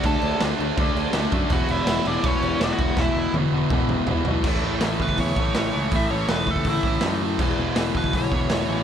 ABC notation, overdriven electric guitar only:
X:1
M:4/4
L:1/8
Q:1/4=163
K:Dlyd
V:1 name="Overdriven electric guitar" clef=bass
[D,A,D]2 [D,A,D] [D,A,D] [D,A,D]2 [D,A,D] [D,A,D] | [E,,B,,E,]2 [E,,B,,E,] [E,,B,,E,] [E,,B,,E,]2 [E,,B,,E,] [E,,B,,E,] | [E,,B,,E,]2 [E,,B,,E,] [E,,B,,E,] [E,,B,,E,]2 [E,,B,,E,] [E,,B,,E,] | [K:Alyd] [A,,E,A,] [A,,E,A,] [A,,E,A,] [A,,E,A,] [A,,E,A,] [A,,E,A,] [A,,E,A,] [A,,E,A,] |
[A,,E,A,] [A,,E,A,] [A,,E,A,] [A,,E,A,] [A,,E,A,] [A,,E,A,] [A,,E,A,] [A,,E,A,] | [E,,B,,E,] [E,,B,,E,] [E,,B,,E,] [E,,B,,E,] [E,,B,,E,] [E,,B,,E,] [E,,B,,E,] [E,,B,,E,] |]